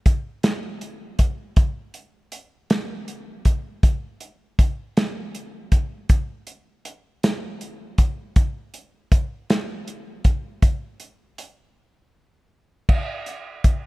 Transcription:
0.06 kick, closed hi-hat
0.43 snare, closed hi-hat
0.81 closed hi-hat
1.19 kick, closed hi-hat
1.56 kick, closed hi-hat
1.94 closed hi-hat
2.32 closed hi-hat
2.70 snare, closed hi-hat
3.08 closed hi-hat
3.45 kick, closed hi-hat
3.83 kick, closed hi-hat
4.20 closed hi-hat
4.59 kick, closed hi-hat
4.97 snare, closed hi-hat
5.35 closed hi-hat
5.72 kick, closed hi-hat
6.09 kick, closed hi-hat
6.47 closed hi-hat
6.85 closed hi-hat
7.23 snare, closed hi-hat
7.61 closed hi-hat
7.98 kick, closed hi-hat
8.36 kick, closed hi-hat
8.74 closed hi-hat
9.12 kick, closed hi-hat
9.50 snare, closed hi-hat
9.88 closed hi-hat
10.24 kick, closed hi-hat
10.62 kick, closed hi-hat
11.00 closed hi-hat
11.38 closed hi-hat
12.89 kick, crash
13.26 closed hi-hat
13.64 kick, closed hi-hat

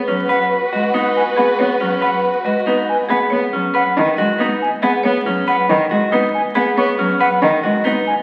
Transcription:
Already playing: F#4 B4 C#5
0.08 F#3 C#4 B4
0.29 B4 F#5
0.51 B4
0.72 G#3 F#4 B4 D#5
0.93 B3 D#4 B4
1.15 B4 G#5
1.36 B3 G#4 B4 F#5
1.58 B3 B4 C#5
1.80 F#3 C#4 B4
2.01 B4 F#5
2.23 B4
2.45 G#3 F#4 B4 D#5
2.66 B3 D#4 B4
2.88 B4 G#5
3.09 B3 G#4 B4 F#5
3.30 B3 C#5
3.53 F#3 C#4
3.74 B4 F#5
3.97 D#3
4.17 G#3 F#4 D#5
4.38 B3 D#4 B4
4.61 G#5
4.82 B3 G#4 B4 F#5
5.03 B3 C#5
5.25 F#3 C#4
5.48 B4 F#5
5.69 D#3
5.91 G#3 F#4 D#5
6.12 B3 D#4 B4
6.34 G#5
6.55 B3 G#4 B4 F#5
6.77 B3 C#5 C#6
6.99 F#3 C#4
7.20 B4 F#5
7.42 D#3
7.63 G#3 F#4 D#5
7.84 B3 D#4 B4
8.07 G#5

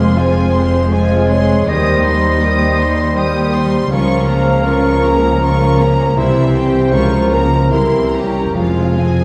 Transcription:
Already playing: F1 F2 F3 G#3 A#3 C4 F4 G#4 C5 F5 C6
0.15 F3 G#3 C4 F4 C5 G#5
0.40 G#4
0.52 G#3 G#4 C6
0.66 F5
0.91 F3 G#3 F4 C5 G#5
1.17 F4
1.29 G#3 G#4 C#5 C6
1.42 G#3
1.66 D#2 D#3 G3 G4 C5 D#5 D#6
1.91 D#4
2.04 G3 D#4 C6
2.16 G3
2.38 D#3 G4
2.42 G4 D#6
2.66 C5
2.77 G3 D#4 C6
2.91 G4
3.14 D#3 G3 G4 G5 D#6
3.41 D#4
3.51 G3 D#4 C6
3.65 G3
3.89 C#2 C#3 F3 C#4 F4 A#4 F5
3.93 C#6
4.16 C#4
4.27 A#3 C#4 A#5
4.41 A#3
4.64 C#4 F4 A#4 C#6
4.89 A#4
5.02 A#3 C#4 A#5
5.15 F4
5.40 A#3 C#4 F4 C#6
5.67 C#4
5.78 A#3 C#4 A#5
5.92 A#3
6.16 C2 C3 E3 G3 E4 G4 C5 E5
6.42 C4
6.55 C4 G4 G5
6.67 E4 G4
6.92 C#2 C#3 F3 C#4 F4 A#4 C#6
7.18 A#3
7.31 A#3 C#4 A#4 A#5
7.44 F4 A#4
7.70 C2 C3 E3 C4 E4 G4 C6
7.99 A#3
8.12 C#4 G4 A#5
8.26 E4 C#5
8.54 F1 F2 F3 G#3 F4 G#4 F5 G#5
8.84 G#3
8.98 C4 G#4 G#5
9.13 F4

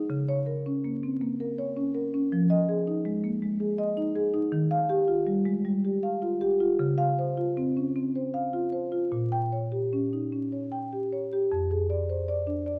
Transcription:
0.10 C#3
0.29 C#5
0.46 A#4
0.66 C#4
0.84 A#3
1.03 C4
1.21 A#3
1.40 A#4
1.58 C#5
1.77 C#4
1.95 A#4
2.14 C#4
2.32 F3
2.50 D#5
2.69 G#4
2.87 D#4
3.05 G#3
3.24 A#3
3.42 G#3
3.60 G#4
3.78 D#5
3.97 D#4
4.16 G#4
4.34 D#4
4.52 D#3
4.71 F5
4.89 G4
5.08 F4
5.27 G3
5.45 G#3
5.65 G3
5.85 G4
6.03 F5
6.22 F4
6.41 G4
6.60 F4
6.79 C#3
6.98 F5
7.19 C5
7.37 F4
7.57 C4
7.77 C#4
7.96 C4
8.15 C5
8.34 F5
8.53 F4
8.72 C5
8.92 F4
9.12 A#2
9.32 G5
9.52 C#5
9.72 G4
9.93 C#4
10.13 D#4
10.32 C#4
10.52 C#5
10.72 G5
10.93 G4
11.12 C#5
11.33 G4
11.52 F2
11.71 G#4
11.90 D5
12.09 C5
12.28 D5
12.47 D4
12.66 D5

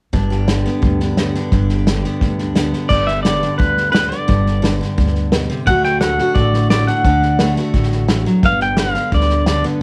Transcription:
0.13 G1 G2 D4, kick, snare
0.30 G4, snare
0.48 D3, snare, hi-hat pedal
0.66 B3, snare
0.82 D2 G2, kick, snare
1.00 D4, snare
1.17 D3 B3, snare, hi-hat pedal
1.35 D4, snare
1.52 G1 G2 D4, kick, snare
1.69 G4, snare
1.87 D3, snare, hi-hat pedal
2.04 B3, snare
2.21 D2 G2, kick, snare
2.38 D4, snare
2.55 D3 B3, snare, hi-hat pedal
2.73 D4, snare
2.89 G1 G2 B3 D5, kick, snare, crash
3.07 E5, snare
3.23 D3 D5, snare, hi-hat pedal
3.42 D4, snare
3.58 D2 G2 B4, kick, snare
3.77 snare
3.92 D3 B4, snare, hi-hat pedal
4.09 B3 D5, snare
4.28 G1 G2 B3, kick, snare
4.46 snare
4.62 D3, snare, hi-hat pedal
4.81 D4, snare
4.98 D2 G2, kick, snare
5.07 snare
5.15 snare
5.32 B2, snare, hi-hat pedal
5.50 C3, snare
5.67 D2 D3 A3 D4 F#4 F#5, kick, snare
5.84 G5, snare
6.01 A3 F#5, snare, hi-hat pedal
6.18 F#4, snare
6.35 A1 A2 D5, kick, snare
6.53 snare
6.70 A3 D5, snare, hi-hat pedal
6.87 D4 F#5, snare
7.04 D2 D3 D4, kick, snare
7.22 snare
7.39 A3, snare, hi-hat pedal
7.57 F#4, snare
7.74 A1 A2, kick, snare
7.83 snare
7.91 snare
8.08 E3, snare, hi-hat pedal
8.26 F#3, snare
8.43 G1 G2 B3 F5, kick, snare
8.60 G5, snare
8.77 D3 F5, snare, hi-hat pedal
8.95 D4, snare
9.12 D2 G2 D5, kick, snare
9.21 snare
9.29 snare
9.46 D3 D5, snare, hi-hat pedal
9.64 B3, snare

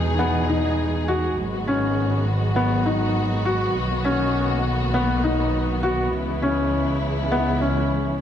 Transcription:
Already playing: E2 B2 E3 G#3 D#4 G#4
0.19 B3
0.49 D#4
1.08 F#4
1.37 G#1 D#3 F#3 B3 F#4
1.67 C#4
2.56 B3
2.86 D#4
3.45 F#4
3.75 B1 A#3
4.05 C#4
4.94 B3
5.24 D#4
5.83 F#4
6.12 C#2 C#3 E3 G#3 E4
6.42 C#4
7.32 B3
7.61 C#4

